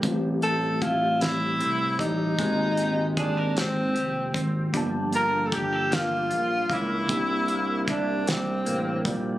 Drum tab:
HH |xxxxxx|xxxxxx|xxxxxx|xxxxxx|
SD |---o--|---o--|---o--|---o--|
BD |o-o--o|o-o--o|o-o--o|o-o--o|